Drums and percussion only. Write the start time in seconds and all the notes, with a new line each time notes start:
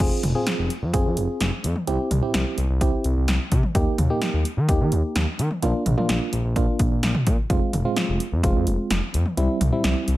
0.00 kick, closed hi-hat, crash
0.23 closed hi-hat, mid tom
0.47 snare, closed hi-hat
0.70 closed hi-hat
0.94 kick, closed hi-hat
1.17 closed hi-hat
1.40 snare, closed hi-hat
1.64 closed hi-hat
1.76 mid tom
1.87 closed hi-hat
2.11 closed hi-hat, mid tom
2.34 snare, closed hi-hat
2.58 closed hi-hat
2.81 kick, closed hi-hat
3.04 closed hi-hat
3.28 snare, closed hi-hat
3.52 kick, closed hi-hat
3.63 mid tom
3.75 kick, closed hi-hat
3.98 closed hi-hat, mid tom
4.22 snare, closed hi-hat
4.45 closed hi-hat
4.68 kick, closed hi-hat
4.92 closed hi-hat
5.16 snare, closed hi-hat
5.39 closed hi-hat
5.51 mid tom
5.63 closed hi-hat
5.86 closed hi-hat, mid tom
5.98 mid tom
6.09 snare, closed hi-hat
6.33 closed hi-hat
6.56 kick, closed hi-hat
6.79 kick, closed hi-hat
7.03 snare, closed hi-hat
7.15 mid tom
7.27 kick, closed hi-hat
7.50 kick, closed hi-hat
7.73 closed hi-hat, mid tom
7.96 snare, closed hi-hat
8.20 closed hi-hat
8.43 kick, closed hi-hat
8.67 closed hi-hat
8.90 snare, closed hi-hat
9.14 closed hi-hat
9.26 mid tom
9.37 closed hi-hat
9.61 closed hi-hat, mid tom
9.84 snare, closed hi-hat
10.08 closed hi-hat